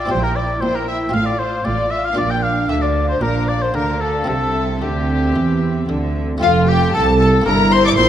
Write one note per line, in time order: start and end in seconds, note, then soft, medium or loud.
0.00 0.10 D5 medium
0.06 1.08 C4 soft
0.06 1.09 E4 soft
0.06 1.10 G4 soft
0.06 0.23 C5 medium
0.10 0.54 A#1 medium
0.10 0.53 A#2 soft
0.10 0.54 A#2 medium
0.10 0.34 E4 medium
0.10 0.25 C5 medium
0.10 0.35 G5 medium
0.23 0.36 A#4 medium
0.23 0.37 A#4 medium
0.35 0.60 E4 soft
0.35 0.43 D5 medium
0.35 0.62 D5 medium
0.35 0.62 G5 soft
0.61 1.05 A#1 medium
0.61 1.06 A#2 medium
0.61 1.05 A#2 soft
0.61 0.86 E4 soft
0.61 0.77 C5 medium
0.61 0.75 C5 medium
0.61 0.88 G5 soft
0.75 0.88 A#4 medium
0.87 1.13 E4 soft
0.87 0.96 E5 medium
0.87 1.15 E5 medium
0.87 1.14 G5 medium
1.09 2.12 C4 soft
1.09 2.13 F4 soft
1.13 1.57 A1 medium
1.13 1.56 A2 soft
1.13 1.57 A2 medium
1.13 1.38 F4 soft
1.13 1.26 F5 medium
1.13 1.28 F5 medium
1.13 1.40 F5 medium
1.26 1.41 D5 medium
1.26 1.40 D5 medium
1.39 1.65 F4 soft
1.39 1.66 C5 medium
1.39 1.65 C5 medium
1.39 1.65 F5 medium
1.65 2.09 A1 medium
1.65 2.08 A2 soft
1.65 2.09 A2 medium
1.65 1.91 F4 medium
1.65 1.92 D5 medium
1.65 1.91 D5 medium
1.65 1.92 F5 soft
1.91 2.17 F4 soft
1.91 2.06 E5 medium
1.91 2.04 E5 medium
1.91 2.17 F5 soft
2.04 2.17 F5 medium
2.13 4.22 A#3 soft
2.13 4.23 D4 soft
2.13 4.23 F4 soft
2.13 2.30 D5 medium
2.17 2.66 A#1 medium
2.17 2.66 A#2 soft
2.17 2.66 A#2 medium
2.17 3.18 D4 medium
2.17 2.32 D5 medium
2.17 3.18 F5 medium
2.30 2.44 G5 medium
2.30 2.45 G5 medium
2.43 2.71 F5 medium
2.43 2.69 F5 medium
2.69 3.21 D2 medium
2.69 3.18 D3 soft
2.69 3.21 D3 medium
2.69 2.83 E5 medium
2.69 2.75 E5 medium
2.82 2.90 D5 medium
2.82 3.08 D5 medium
3.09 3.23 C5 medium
3.09 3.22 C5 medium
3.21 3.74 A#1 medium
3.21 3.70 A#2 soft
3.21 3.74 A#2 medium
3.21 3.74 D4 medium
3.21 3.47 A#4 medium
3.21 3.50 A#4 medium
3.21 3.73 F5 medium
3.47 3.61 D5 medium
3.47 3.63 D5 medium
3.60 3.74 C5 medium
3.60 3.76 C5 medium
3.74 4.27 D2 medium
3.74 4.24 D3 medium
3.74 4.27 D3 medium
3.74 4.27 D4 medium
3.74 4.00 A#4 medium
3.74 4.03 A#4 medium
3.74 4.27 F5 medium
4.00 4.27 A4 medium
4.00 4.28 A4 medium
4.24 4.78 C3 soft
4.24 4.82 C3 medium
4.24 6.36 C4 soft
4.24 4.81 C4 soft
4.24 6.37 E4 soft
4.24 4.81 A4 medium
4.24 4.80 E5 medium
4.28 4.82 C2 medium
4.28 4.63 A4 medium
4.81 5.36 D2 medium
4.81 5.36 D3 medium
4.81 5.32 D3 soft
4.81 6.19 C4 soft
4.81 5.89 G4 medium
4.81 5.85 G4 medium
4.81 6.19 E5 medium
5.35 5.89 E2 medium
5.35 5.89 E3 medium
5.35 5.85 E3 soft
5.89 6.41 D2 medium
5.89 6.38 D3 soft
5.89 6.41 D3 medium
6.38 6.91 F2 medium
6.38 7.41 A3 medium
6.38 7.42 C4 medium
6.38 7.43 F4 medium
6.38 6.66 F4 medium
6.38 6.70 F4 medium
6.42 6.91 F1 medium
6.42 6.91 F2 medium
6.42 7.43 A4 medium
6.42 6.50 F5 loud
6.67 6.93 G4 medium
6.67 6.94 G4 medium
6.67 6.94 G5 loud
6.93 7.45 C2 medium
6.93 7.46 C2 medium
6.93 7.43 C2 medium
6.93 7.06 A4 medium
6.93 7.02 A4 medium
6.93 7.19 A5 loud
7.20 7.45 A4 medium
7.20 7.46 A4 medium
7.20 7.28 A5 loud
7.42 8.09 A#3 medium
7.42 8.09 E4 medium
7.46 7.97 G1 medium
7.46 7.94 G2 medium
7.46 7.97 G2 medium
7.46 8.09 E4 medium
7.46 7.74 A#4 medium
7.46 7.72 A#4 medium
7.46 7.72 A#5 loud
7.71 7.85 C5 medium
7.71 7.84 C5 medium
7.71 7.85 C6 loud
7.84 7.98 D5 medium
7.84 7.91 D5 medium
7.84 7.91 D6 loud
7.97 8.09 A#1 medium
7.97 8.09 A#2 medium
7.97 8.09 C5 medium
7.97 8.09 C6 loud